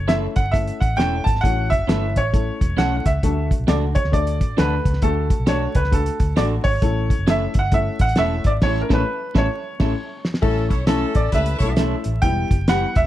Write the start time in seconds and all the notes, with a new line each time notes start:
Already playing: C#5
0.00 F#1
0.07 A3 C#4 E4 A4 E5, snare, closed hi-hat
0.36 G1 F#5, kick, closed hi-hat
0.52 A3 C#4 E4 A4 E5, kick, closed hi-hat
0.68 closed hi-hat
0.80 A1 F#5, kick, closed hi-hat
0.97 E1 A3 C#4 E4 A4 G5, snare, closed hi-hat
1.24 G#1 A5, kick, snare, closed hi-hat
1.35 snare
1.41 A1 A3 C#4 E4 F#4 F#5, kick
1.45 closed hi-hat
1.70 E5, kick, closed hi-hat
1.78 F#1
1.87 G1 A3 C#4 E4 A4 B4, snare, closed hi-hat
2.16 A1 C#5, kick, closed hi-hat
2.33 A3 C#4 E4 A4, kick, closed hi-hat
2.61 E1, kick, closed hi-hat
2.77 B1 A3 C#4 E4 A4 F#5, snare, closed hi-hat
2.97 F#5
3.06 C#2 E5, kick, snare, closed hi-hat
3.23 D2 A3 D4 F#4 A4, kick, closed hi-hat
3.51 kick, closed hi-hat
3.60 B1
3.67 C#2 A3 D4 F#4 A4 D5, snare, closed hi-hat
3.95 C#5, kick, closed hi-hat
4.04 D2, snare
4.12 A3 D4 F#4 A4 D5, kick, closed hi-hat
4.27 closed hi-hat
4.41 A1, kick, closed hi-hat
4.57 D2 A3 D4 F#4 A4 B4, snare, closed hi-hat
4.85 C#2, kick, closed hi-hat
4.93 snare
5.02 D2 A3 D4 F#4 A4, kick, closed hi-hat
5.30 kick, closed hi-hat
5.40 B1
5.47 A3 D4 F#4 A4 C#5, snare, closed hi-hat
5.75 C#2 B4, kick, closed hi-hat
5.84 snare
5.92 A3 D4 F#4 A4, kick, closed hi-hat
6.06 closed hi-hat
6.20 D2, kick, closed hi-hat
6.36 A1 A3 D4 F#4 A4 D5, snare, closed hi-hat
6.64 G#1 C#5, kick, open hi-hat
6.82 A1 A3 C#4 E4 A4, kick, closed hi-hat
7.10 kick, closed hi-hat
7.18 F#1
7.27 A3 C#4 E4 A4 E5, snare, closed hi-hat
7.54 G1, kick, closed hi-hat
7.59 F#5
7.72 A3 C#4 E4 A4 E5, kick, closed hi-hat
7.99 A1 F#5, kick, closed hi-hat
8.09 closed hi-hat
8.16 E1 A3 C#4 E4 A4 E5, snare, closed hi-hat
8.44 G#1 D5, kick, closed hi-hat
8.61 A1 A3 C#4 E4 A4 C#5, kick, snare, crash
8.81 A#4
8.89 A1 A3 C#4 E4 A4, kick, snare
8.94 B4
9.35 A1 A3 C#4 E4 A4 C#5, kick, snare
9.80 A1 A3 C#4 E4 A4, kick, snare, crash
10.25 snare
10.34 snare
10.41 A1 A3 C#4 E4 A4, kick, crash
10.69 B1 E4 A4 C#5, kick, closed hi-hat
10.85 A3 C#4 E4 A4, snare, closed hi-hat
11.15 A1 D5, kick, closed hi-hat
11.31 C#2 A3 C#4 E4 G4 A4 B4 E5, kick, closed hi-hat
11.46 closed hi-hat
11.58 B1 E4 A4 C#5, kick, closed hi-hat
11.62 A3 C#4 E4 A4
11.76 A3 C#4 E4 A4, snare, closed hi-hat
12.04 A1, closed hi-hat
12.22 E1 G3 B3 E4 G4 G5, kick, closed hi-hat
12.51 F#1, kick, closed hi-hat
12.68 G3 B3 E4 G4 B4 F#5, snare, closed hi-hat
12.96 E1 E5, kick, closed hi-hat